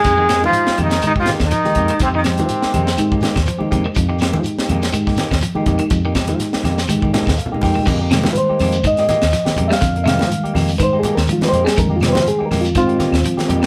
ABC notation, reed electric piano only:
X:1
M:4/4
L:1/16
Q:"Swing 16ths" 1/4=123
K:Fm
V:1 name="Reed electric piano"
z16 | z12 c4 | z16 | z8 z2 e2 f2 g2 |
z4 [=Bc]4 e e6 [=ef]- | [=ef]2 [ef]4 z2 (3[=Bc]2 A2 _B2 (3F2 [=Bc]2 A2 | (3B2 F2 [=Bc]2 (3A2 _B2 F2 [CF]8 |]
V:2 name="Reed electric piano"
[A,B,EG] z2 [A,B,EG]3 z2 [A,B,EG]3 z2 [A,B,EG]3- | [A,B,EG] z2 [A,B,EB]3 z2 [A,B,EG]3 z2 [A,B,EG]3- | [A,B,EG] z2 [A,B,EG]3 z2 [A,B,EG]3 z2 [A,B,EG]3- | [A,B,EG] z2 [A,B,EG]3 z2 [A,B,EG]3 z2 [A,B,EG]3 |
z2 [E,G,A,B,]6 z8 | z2 [E,G,A,B,]8- [E,G,A,B,]2 [E,G,A,B,]2 z2 | [E,G,A,B,]16 |]